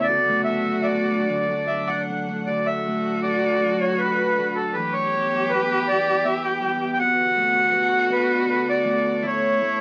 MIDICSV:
0, 0, Header, 1, 5, 480
1, 0, Start_track
1, 0, Key_signature, 2, "major"
1, 0, Tempo, 793651
1, 41, Time_signature, 3, 2, 24, 8
1, 1961, Tempo, 746269
1, 5321, Tempo, 765306
1, 6163, End_track
2, 0, Start_track
2, 0, Title_t, "Accordion"
2, 0, Program_c, 0, 21
2, 21, Note_on_c, 0, 74, 91
2, 251, Note_off_c, 0, 74, 0
2, 267, Note_on_c, 0, 76, 81
2, 475, Note_off_c, 0, 76, 0
2, 492, Note_on_c, 0, 76, 49
2, 507, Note_on_c, 0, 74, 75
2, 526, Note_off_c, 0, 76, 0
2, 1011, Note_on_c, 0, 76, 73
2, 1132, Note_on_c, 0, 78, 70
2, 1137, Note_off_c, 0, 76, 0
2, 1223, Note_off_c, 0, 74, 0
2, 1489, Note_on_c, 0, 74, 81
2, 1504, Note_off_c, 0, 78, 0
2, 1609, Note_on_c, 0, 76, 74
2, 1612, Note_off_c, 0, 74, 0
2, 1935, Note_off_c, 0, 76, 0
2, 1952, Note_on_c, 0, 74, 85
2, 2325, Note_on_c, 0, 73, 68
2, 2334, Note_off_c, 0, 74, 0
2, 2439, Note_on_c, 0, 71, 85
2, 2451, Note_off_c, 0, 73, 0
2, 2804, Note_on_c, 0, 69, 74
2, 2817, Note_off_c, 0, 71, 0
2, 2922, Note_on_c, 0, 71, 80
2, 2932, Note_off_c, 0, 69, 0
2, 3045, Note_on_c, 0, 73, 89
2, 3051, Note_off_c, 0, 71, 0
2, 3411, Note_on_c, 0, 71, 88
2, 3421, Note_off_c, 0, 73, 0
2, 3657, Note_on_c, 0, 74, 85
2, 3658, Note_off_c, 0, 71, 0
2, 3893, Note_on_c, 0, 76, 93
2, 3897, Note_off_c, 0, 74, 0
2, 4012, Note_off_c, 0, 76, 0
2, 4013, Note_on_c, 0, 79, 85
2, 4321, Note_off_c, 0, 79, 0
2, 4331, Note_on_c, 0, 79, 78
2, 4368, Note_off_c, 0, 79, 0
2, 4376, Note_on_c, 0, 78, 116
2, 5102, Note_on_c, 0, 71, 81
2, 5109, Note_off_c, 0, 78, 0
2, 5316, Note_off_c, 0, 71, 0
2, 5341, Note_on_c, 0, 71, 88
2, 5453, Note_off_c, 0, 71, 0
2, 5461, Note_on_c, 0, 74, 81
2, 5819, Note_off_c, 0, 74, 0
2, 5825, Note_on_c, 0, 73, 83
2, 6163, Note_off_c, 0, 73, 0
2, 6163, End_track
3, 0, Start_track
3, 0, Title_t, "Cello"
3, 0, Program_c, 1, 42
3, 36, Note_on_c, 1, 66, 98
3, 1014, Note_on_c, 1, 62, 66
3, 1023, Note_off_c, 1, 66, 0
3, 1484, Note_off_c, 1, 62, 0
3, 1488, Note_on_c, 1, 66, 99
3, 2919, Note_on_c, 1, 67, 114
3, 2929, Note_off_c, 1, 66, 0
3, 4372, Note_on_c, 1, 66, 112
3, 4381, Note_off_c, 1, 67, 0
3, 5797, Note_on_c, 1, 64, 94
3, 5806, Note_off_c, 1, 66, 0
3, 6163, Note_off_c, 1, 64, 0
3, 6163, End_track
4, 0, Start_track
4, 0, Title_t, "Ambient pad"
4, 0, Program_c, 2, 92
4, 0, Note_on_c, 2, 69, 88
4, 30, Note_on_c, 2, 62, 78
4, 35, Note_on_c, 2, 54, 80
4, 1469, Note_off_c, 2, 69, 0
4, 1472, Note_off_c, 2, 62, 0
4, 1475, Note_off_c, 2, 54, 0
4, 1497, Note_on_c, 2, 54, 78
4, 1497, Note_on_c, 2, 62, 72
4, 1500, Note_on_c, 2, 69, 88
4, 2919, Note_off_c, 2, 54, 0
4, 2920, Note_off_c, 2, 62, 0
4, 2921, Note_off_c, 2, 69, 0
4, 2930, Note_on_c, 2, 59, 66
4, 2931, Note_on_c, 2, 52, 83
4, 2935, Note_on_c, 2, 67, 86
4, 4348, Note_off_c, 2, 52, 0
4, 4350, Note_off_c, 2, 67, 0
4, 4368, Note_on_c, 2, 69, 88
4, 4373, Note_on_c, 2, 50, 81
4, 5772, Note_off_c, 2, 59, 0
4, 5789, Note_off_c, 2, 50, 0
4, 5796, Note_on_c, 2, 52, 86
4, 5799, Note_on_c, 2, 61, 81
4, 6163, Note_off_c, 2, 52, 0
4, 6163, Note_off_c, 2, 61, 0
4, 6163, Note_off_c, 2, 69, 0
4, 6163, End_track
5, 0, Start_track
5, 0, Title_t, "Steel-string acoustic guitar"
5, 0, Program_c, 3, 25
5, 0, Note_on_c, 3, 45, 76
5, 0, Note_on_c, 3, 52, 75
5, 0, Note_on_c, 3, 59, 54
5, 0, Note_on_c, 3, 61, 60
5, 59, Note_on_c, 3, 38, 61
5, 60, Note_on_c, 3, 66, 45
5, 76, Note_off_c, 3, 52, 0
5, 93, Note_off_c, 3, 61, 0
5, 94, Note_off_c, 3, 45, 0
5, 95, Note_off_c, 3, 59, 0
5, 172, Note_on_c, 3, 57, 56
5, 294, Note_on_c, 3, 62, 51
5, 409, Note_off_c, 3, 66, 0
5, 411, Note_on_c, 3, 66, 45
5, 528, Note_off_c, 3, 62, 0
5, 530, Note_on_c, 3, 62, 49
5, 656, Note_off_c, 3, 57, 0
5, 659, Note_on_c, 3, 57, 45
5, 768, Note_off_c, 3, 38, 0
5, 776, Note_on_c, 3, 38, 65
5, 778, Note_off_c, 3, 66, 0
5, 781, Note_on_c, 3, 66, 53
5, 901, Note_off_c, 3, 57, 0
5, 903, Note_on_c, 3, 57, 45
5, 1027, Note_off_c, 3, 62, 0
5, 1029, Note_on_c, 3, 62, 49
5, 1142, Note_off_c, 3, 66, 0
5, 1145, Note_on_c, 3, 66, 45
5, 1266, Note_off_c, 3, 62, 0
5, 1269, Note_on_c, 3, 62, 52
5, 1378, Note_off_c, 3, 57, 0
5, 1381, Note_on_c, 3, 57, 43
5, 1489, Note_off_c, 3, 38, 0
5, 1497, Note_on_c, 3, 38, 65
5, 1736, Note_off_c, 3, 57, 0
5, 1738, Note_on_c, 3, 57, 45
5, 1968, Note_off_c, 3, 62, 0
5, 1970, Note_on_c, 3, 62, 49
5, 2202, Note_off_c, 3, 66, 0
5, 2205, Note_on_c, 3, 66, 55
5, 2448, Note_off_c, 3, 62, 0
5, 2456, Note_on_c, 3, 62, 52
5, 2683, Note_off_c, 3, 57, 0
5, 2691, Note_on_c, 3, 57, 60
5, 2930, Note_on_c, 3, 52, 64
5, 2934, Note_off_c, 3, 38, 0
5, 2980, Note_off_c, 3, 57, 0
5, 2980, Note_off_c, 3, 66, 0
5, 2984, Note_off_c, 3, 62, 0
5, 3177, Note_on_c, 3, 55, 49
5, 3413, Note_on_c, 3, 59, 57
5, 3657, Note_on_c, 3, 64, 59
5, 3890, Note_off_c, 3, 59, 0
5, 3892, Note_on_c, 3, 59, 59
5, 4119, Note_off_c, 3, 55, 0
5, 4127, Note_on_c, 3, 55, 65
5, 4362, Note_off_c, 3, 52, 0
5, 4376, Note_on_c, 3, 47, 74
5, 4412, Note_off_c, 3, 55, 0
5, 4413, Note_off_c, 3, 64, 0
5, 4613, Note_on_c, 3, 57, 53
5, 4633, Note_off_c, 3, 59, 0
5, 4842, Note_on_c, 3, 59, 58
5, 5083, Note_on_c, 3, 62, 63
5, 5311, Note_off_c, 3, 59, 0
5, 5319, Note_on_c, 3, 59, 56
5, 5556, Note_off_c, 3, 57, 0
5, 5559, Note_on_c, 3, 57, 63
5, 5794, Note_off_c, 3, 47, 0
5, 5797, Note_on_c, 3, 45, 75
5, 5845, Note_off_c, 3, 59, 0
5, 5847, Note_off_c, 3, 62, 0
5, 6041, Note_off_c, 3, 57, 0
5, 6043, Note_on_c, 3, 57, 47
5, 6163, Note_off_c, 3, 45, 0
5, 6163, Note_off_c, 3, 57, 0
5, 6163, End_track
0, 0, End_of_file